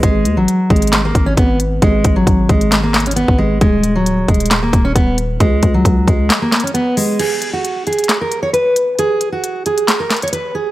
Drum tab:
CC |------------------------------------------------------------------------------------------------|------------------------------------------------------------------------------------------------|------------------------------------------------------------------------------------------------|------------------------------------------------------------------------------------------------|
HH |x-----------x-----------x-----------x--x--x--x--x-----------x-----------x-----------x-----------|x-----------x-----------x-----------x-----x-----x-----------x--x--x--x--x-----------------------|x-----------x-----------x-----------x--x--x--x--x-----------x-----------x-----------x-----------|x-----------x-----------x-----------x-----------x-----------x---x---x---x-----------o-----------|
CP |------------------------------------------------x-----------------------------------------------|------------------------------------------------x-----------x-----------------------------------|------------------------------------------------x-----------------------------------------------|------------------------------------------------x-----------x-----------------------------------|
SD |------------------------------------------------o-----------------------------------------------|------------------------------------------------o-----------o-----------------------------------|------------------------------------------------o-----------------------------------------------|------------------------------------------------o-----------o-----------------------------------|
BD |o-----------------------------------o-----------------------o-----------o-----------------------|o-----------o-----------o-----------o-----------------------------------------o-----------------|o-----------------------------------o-----------------------o-----------o-----------------------|o-----------o-----------o-----------o-----------------------------------------------------------|

CC |x-----------------------------------------------------------------------------------------------|------------------------------------------------------------------------------------------------|
HH |x-----------x-----------x-----------x--x--x--x--x-----------x-----------x-----------x-----------|x-----------x-----------x-----------x-----x-----x-----------x--x--x--x--x-----------------------|
CP |------------------------------------------------x-----------------------------------------------|------------------------------------------------x-----------x-----------------------------------|
SD |------------------------------------------------o-----------------------------------------------|------------------------------------------------o-----------o-----------------------------------|
BD |------------------------------------------------------------------------------------------------|------------------------------------------------------------------------------------------------|